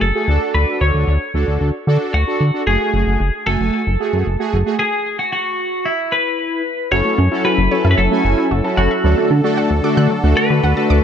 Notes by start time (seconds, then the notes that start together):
0.01 F#1 A4
0.15 A3 F#4 G#4
0.28 D2 D4 F#4 A4
0.55 D2 B4
0.81 D2 C#5
0.94 D2
1.07 D2
1.34 D2 D4 F#4 A4
1.47 D2
1.61 D2
1.87 D3 D4 F#4 A4
2.14 D2 F#4
2.27 D4 F#4 A4
2.40 D3
2.54 D4 F#4 A4
2.67 F#1 A3 F#4 G#4
2.94 F#1
3.07 F#1
3.20 F#1
3.47 F#1 A3 F#4 A4 G#5
3.60 F#1
3.87 F#1
4.00 A3 F#4 G#4
4.13 F#2
4.26 F#1
4.39 A3 F#4 G#4
4.53 F#1
4.66 A3 F#4 G#4
4.79 G#4
5.19 F#4
5.33 F#4
5.86 E4
6.12 B4
6.92 F#1 F#3 C#4 E4 F#4 A4 C#5
7.05 A3
7.18 F#2 C#4
7.31 C#4 E4 F#4 A4
7.45 F#4 B4
7.58 F#1
7.71 C#4 E4 F#4 A4 C#5
7.85 F#2 E5
7.91 B4
7.98 F#1 F#3 A4
8.11 A3 C#4 E4 F#4 G#5
8.24 F#1
8.38 E4
8.51 F#1 F#4
8.64 C#4 E4 F#4 A4
8.77 F#1 F#4 C#5
8.91 E5
9.04 D2 D3 F#3 A3 D4 F#4 A4
9.18 A3
9.31 D3 D4
9.44 A3 D4 F#4 A4
9.57 F#5
9.71 D2
9.84 A3 D4 F#4 A4 D6
9.97 D3 F#6
10.10 F#3
10.24 D2 A3 D4 F#4 A4
10.37 B4
10.50 D3 F#4
10.63 D2 F#5
10.77 A3 D4 F#4 A4 A5
10.90 D2 D6